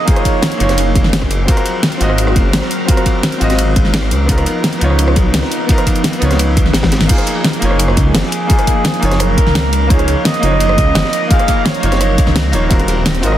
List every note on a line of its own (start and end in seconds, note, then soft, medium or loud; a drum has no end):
0.00 1.44 F3 medium
0.00 0.05 A#3 medium
0.00 1.44 A#3 medium
0.00 0.07 D#4 medium
0.00 1.44 D#4 medium
0.00 0.09 F4 medium
0.00 0.10 G#4 medium
0.00 1.44 G#4 medium
0.00 0.63 C#5 loud
0.05 0.56 A#3 medium
0.05 0.58 D#4 medium
0.05 0.59 F4 medium
0.05 1.27 C#5 loud
0.05 kick loud
0.05 closed hi-hat medium
0.05 ride medium
0.10 0.60 G#4 medium
0.16 cross-stick soft
0.16 closed hi-hat soft
0.25 kick medium
0.25 closed hi-hat medium
0.25 ride medium
0.42 snare loud
0.42 closed hi-hat medium
0.42 ride medium
0.52 closed hi-hat soft
0.58 0.94 F#1 loud
0.58 1.45 A#3 medium
0.58 1.46 D#4 medium
0.58 1.46 F4 medium
0.58 closed hi-hat medium
0.58 ride medium
0.63 1.47 C#5 loud
0.69 cross-stick soft
0.69 snare soft
0.69 closed hi-hat soft
0.78 closed hi-hat medium
0.78 ride medium
0.95 1.47 F#1 medium
0.95 kick loud
0.95 closed hi-hat medium
0.95 ride medium
1.04 snare soft
1.13 snare loud
1.13 closed hi-hat medium
1.13 ride medium
1.22 kick medium
1.22 cross-stick soft
1.31 closed hi-hat medium
1.31 ride medium
1.45 4.09 F#3 medium
1.45 1.96 C4 medium
1.45 4.09 C4 medium
1.45 1.98 F4 medium
1.45 1.99 F#4 medium
1.45 4.09 A#4 medium
1.45 4.09 F5 medium
1.45 kick loud
1.45 closed hi-hat medium
1.45 ride medium
1.51 2.00 A#4 medium
1.57 cross-stick soft
1.57 closed hi-hat soft
1.66 closed hi-hat medium
1.66 ride medium
1.83 snare loud
1.83 closed hi-hat medium
1.83 ride medium
1.92 closed hi-hat soft
1.98 2.34 G#1 loud
1.98 2.84 C4 medium
1.98 2.86 F4 medium
1.98 2.87 F#4 medium
1.98 closed hi-hat medium
1.98 ride medium
2.03 2.88 D#5 loud
2.10 cross-stick soft
2.18 closed hi-hat medium
2.18 ride medium
2.27 cross-stick medium
2.27 ride soft
2.36 2.52 F#1 medium
2.36 kick loud
2.36 closed hi-hat medium
2.36 ride medium
2.53 2.61 G#1 medium
2.53 snare loud
2.53 closed hi-hat medium
2.53 ride loud
2.62 cross-stick soft
2.62 snare soft
2.71 closed hi-hat medium
2.71 ride medium
2.85 3.37 C4 medium
2.85 3.38 F4 medium
2.85 3.39 F#4 medium
2.85 kick loud
2.85 closed hi-hat medium
2.85 ride medium
2.91 3.40 A#4 medium
2.97 cross-stick soft
2.97 closed hi-hat soft
3.06 kick medium
3.06 closed hi-hat medium
3.06 ride medium
3.23 snare loud
3.23 closed hi-hat medium
3.23 ride medium
3.32 closed hi-hat soft
3.38 3.75 G#1 loud
3.38 4.09 C4 medium
3.38 4.10 F4 medium
3.38 4.11 F#4 medium
3.38 closed hi-hat medium
3.38 ride medium
3.44 4.12 D#5 loud
3.50 cross-stick soft
3.50 snare soft
3.50 closed hi-hat soft
3.58 closed hi-hat medium
3.58 ride medium
3.76 4.13 G#1 medium
3.76 kick loud
3.76 closed hi-hat medium
3.76 ride medium
3.85 snare soft
3.94 snare loud
3.94 closed hi-hat medium
3.94 ride medium
4.03 cross-stick soft
4.11 4.45 C#2 loud
4.11 7.07 F3 medium
4.11 7.07 B3 medium
4.11 7.06 D#4 medium
4.11 7.07 A#4 medium
4.11 closed hi-hat medium
4.11 ride medium
4.26 4.77 B3 medium
4.26 4.79 D#4 medium
4.26 4.80 F4 medium
4.26 kick loud
4.26 closed hi-hat medium
4.26 ride medium
4.32 4.81 A#4 medium
4.38 cross-stick soft
4.38 closed hi-hat soft
4.46 closed hi-hat medium
4.46 ride medium
4.64 snare loud
4.64 closed hi-hat medium
4.64 ride medium
4.73 closed hi-hat soft
4.79 5.15 C#2 loud
4.79 5.65 B3 medium
4.79 5.67 D#4 medium
4.79 5.68 F4 medium
4.79 closed hi-hat medium
4.79 ride medium
4.84 5.69 C#5 loud
4.90 cross-stick soft
4.98 closed hi-hat loud
4.98 ride medium
5.08 cross-stick medium
5.08 ride soft
5.16 5.32 B1 loud
5.16 kick loud
5.16 closed hi-hat medium
5.16 ride medium
5.34 5.42 C#2 medium
5.34 snare loud
5.34 closed hi-hat medium
5.34 ride medium
5.43 cross-stick soft
5.43 snare soft
5.52 closed hi-hat medium
5.52 ride medium
5.66 6.17 B3 medium
5.66 6.19 D#4 medium
5.66 6.20 F4 medium
5.66 kick loud
5.66 closed hi-hat medium
5.66 ride medium
5.72 6.21 A#4 loud
5.78 cross-stick soft
5.78 closed hi-hat soft
5.87 kick medium
5.87 closed hi-hat medium
5.87 ride medium
5.96 closed hi-hat soft
6.04 snare loud
6.04 closed hi-hat medium
6.04 ride medium
6.13 closed hi-hat soft
6.19 6.39 C#2 loud
6.19 7.06 B3 medium
6.19 7.07 D#4 medium
6.19 7.08 F4 medium
6.19 closed hi-hat medium
6.19 ride medium
6.25 7.09 C#5 loud
6.31 cross-stick soft
6.31 snare soft
6.31 closed hi-hat soft
6.39 6.73 C#2 medium
6.39 closed hi-hat loud
6.39 ride loud
6.57 kick loud
6.57 closed hi-hat medium
6.57 ride medium
6.66 snare soft
6.73 7.08 G#1 medium
6.73 snare loud
6.73 snare medium
6.73 closed hi-hat medium
6.73 ride medium
6.83 kick medium
6.83 snare loud
6.83 high tom medium
6.83 ride medium
6.92 snare loud
6.92 closed hi-hat medium
6.92 ride medium
7.01 snare medium
7.07 12.67 F3 medium
7.07 7.58 A#3 medium
7.07 12.67 A#3 medium
7.07 7.60 D#4 medium
7.07 12.67 D#4 medium
7.07 7.61 F4 medium
7.07 9.88 G#4 medium
7.07 kick loud
7.07 closed hi-hat loud
7.07 ride medium
7.07 crash loud
7.12 7.61 G#4 medium
7.18 cross-stick soft
7.18 closed hi-hat soft
7.27 closed hi-hat medium
7.27 ride medium
7.44 snare loud
7.44 closed hi-hat loud
7.44 ride medium
7.53 closed hi-hat soft
7.59 7.96 F#1 loud
7.59 8.46 A#3 medium
7.59 8.47 D#4 medium
7.59 8.48 F4 medium
7.59 closed hi-hat medium
7.59 ride medium
7.65 8.49 C#5 loud
7.71 cross-stick soft
7.79 closed hi-hat medium
7.79 ride medium
7.88 cross-stick soft
7.88 ride soft
7.97 8.13 C#2 loud
7.97 kick loud
7.97 closed hi-hat medium
7.97 ride medium
8.15 8.23 F#1 medium
8.15 9.22 G#4 medium
8.15 snare loud
8.15 closed hi-hat medium
8.15 ride medium
8.23 snare soft
8.32 closed hi-hat medium
8.32 ride medium
8.47 8.98 A#3 medium
8.47 9.00 D#4 medium
8.47 9.01 F4 medium
8.47 kick loud
8.47 closed hi-hat medium
8.47 ride medium
8.53 9.02 G#4 medium
8.59 cross-stick soft
8.59 closed hi-hat soft
8.67 kick medium
8.67 closed hi-hat medium
8.67 ride medium
8.84 snare loud
8.84 closed hi-hat medium
8.84 ride medium
8.94 closed hi-hat soft
9.00 9.36 F#1 loud
9.00 9.86 A#3 medium
9.00 9.88 D#4 medium
9.00 9.89 F4 medium
9.00 closed hi-hat medium
9.00 ride medium
9.05 9.89 C#5 loud
9.11 cross-stick soft
9.11 snare soft
9.11 closed hi-hat soft
9.20 9.92 A#4 loud
9.20 cross-stick soft
9.20 closed hi-hat medium
9.20 ride medium
9.38 kick loud
9.38 closed hi-hat medium
9.38 ride medium
9.46 10.15 C#2 loud
9.46 snare soft
9.55 snare loud
9.55 closed hi-hat medium
9.55 ride medium
9.73 closed hi-hat medium
9.73 ride medium
9.87 10.38 A#3 medium
9.87 10.40 D#4 medium
9.87 10.41 F4 medium
9.87 10.27 C#5 loud
9.87 13.38 A#5 medium
9.87 kick loud
9.87 closed hi-hat medium
9.87 ride medium
9.93 10.42 G#4 medium
9.99 cross-stick soft
9.99 closed hi-hat soft
10.08 closed hi-hat medium
10.08 ride medium
10.25 11.30 D#5 loud
10.25 snare loud
10.25 closed hi-hat medium
10.25 ride medium
10.34 closed hi-hat soft
10.40 10.77 F#1 loud
10.40 11.26 A#3 medium
10.40 11.28 D#4 medium
10.40 11.29 F4 medium
10.40 closed hi-hat medium
10.40 ride medium
10.46 11.30 C#5 loud
10.52 cross-stick soft
10.60 closed hi-hat medium
10.60 ride loud
10.69 cross-stick soft
10.69 ride soft
10.78 10.94 C#2 loud
10.78 kick loud
10.78 closed hi-hat medium
10.78 ride medium
10.95 11.03 F#1 medium
10.95 snare loud
10.95 closed hi-hat medium
10.95 ride medium
11.04 snare medium
11.13 closed hi-hat medium
11.13 ride medium
11.28 11.79 A#3 medium
11.28 11.81 D#4 medium
11.28 11.81 F4 medium
11.28 11.67 F5 loud
11.28 kick loud
11.28 closed hi-hat medium
11.28 ride medium
11.33 11.82 G#4 medium
11.39 cross-stick soft
11.39 closed hi-hat soft
11.48 kick medium
11.48 closed hi-hat medium
11.48 ride medium
11.65 12.53 C#5 loud
11.65 snare loud
11.65 closed hi-hat medium
11.65 ride medium
11.74 closed hi-hat soft
11.80 12.17 F#1 loud
11.80 12.50 A#3 medium
11.80 12.51 D#4 medium
11.80 12.52 F4 medium
11.80 closed hi-hat medium
11.80 ride medium
11.86 12.53 C#5 loud
11.92 cross-stick soft
11.92 snare soft
11.92 closed hi-hat soft
12.01 cross-stick soft
12.01 closed hi-hat medium
12.01 ride medium
12.18 kick loud
12.18 closed hi-hat medium
12.18 ride medium
12.27 12.55 C#2 loud
12.27 snare soft
12.36 snare loud
12.36 closed hi-hat medium
12.36 ride medium
12.52 13.22 D#1 loud
12.52 12.60 A#3 medium
12.52 12.60 D#4 medium
12.52 12.60 F4 medium
12.52 12.61 C#5 loud
12.52 closed hi-hat medium
12.52 ride medium
12.68 13.38 F#3 medium
12.68 13.19 C4 medium
12.68 13.38 C4 medium
12.68 13.21 F4 medium
12.68 13.22 F#4 medium
12.68 13.38 F5 medium
12.68 kick loud
12.68 closed hi-hat medium
12.68 ride medium
12.74 13.23 A#4 loud
12.79 cross-stick soft
12.79 closed hi-hat soft
12.88 closed hi-hat medium
12.88 ride medium
13.06 snare loud
13.06 closed hi-hat medium
13.06 ride medium
13.15 closed hi-hat soft
13.21 13.38 G#1 loud
13.21 13.38 C4 medium
13.21 13.38 F4 medium
13.21 13.38 F#4 medium
13.21 13.38 A#4 loud
13.21 closed hi-hat medium
13.21 ride medium
13.26 13.38 D#5 loud
13.32 cross-stick soft